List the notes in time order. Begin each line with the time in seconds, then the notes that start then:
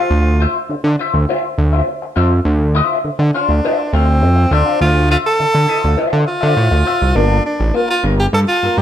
Already playing: F4
0.10 D2
0.40 F4 C5 E5
0.69 D3, muted clean electric guitar stroke
0.84 D3, muted clean electric guitar stroke
0.99 F4 C5 E5
1.14 D2, muted clean electric guitar stroke
1.29 F4 C5 E5
1.58 D2, muted clean electric guitar stroke
1.73 F4 C5 E5
1.88 muted clean electric guitar stroke
2.02 muted clean electric guitar stroke
2.16 F2 F4 C5 E5
2.31 muted clean electric guitar stroke
2.45 D2
2.75 F4 C5 E5
3.04 D3, muted clean electric guitar stroke
3.19 D3, muted clean electric guitar stroke
3.34 D4 F4 C5 F5
3.49 D2, muted clean electric guitar stroke
3.65 F4 C5 E5
3.79 muted clean electric guitar stroke
3.93 D2 C4 F4 C5 F5
4.08 muted clean electric guitar stroke
4.22 F2, muted clean electric guitar stroke
4.36 muted clean electric guitar stroke
4.51 D2 D4 F4 C5 E5
4.66 F4 C5 F5
4.81 D2 F4
5.10 F4 C5 E5
5.27 A4
5.39 D3, muted clean electric guitar stroke
5.54 D3, muted clean electric guitar stroke
5.68 F4 C5 E5
5.82 D2, muted clean electric guitar stroke
5.97 F4 C5 E5
6.13 D3
6.26 F4, muted clean electric guitar stroke
6.41 D3 F4 C5 E5
6.57 A2, muted clean electric guitar stroke
6.71 D2, muted clean electric guitar stroke
6.85 F4 C5 E5
7.01 C2, muted clean electric guitar stroke
7.15 G1 A#3 D4 F4 A4
7.46 D4
7.59 A1, muted clean electric guitar stroke
7.74 A#3 F4 A#4
7.89 F4, muted clean electric guitar stroke
8.04 G1 A#3 F4 A#4
8.19 G4, muted clean electric guitar stroke
8.33 G2 A4
8.48 F4, muted clean electric guitar stroke
8.63 G2 A#3 F4 A#4
8.78 G2 G4, muted clean electric guitar stroke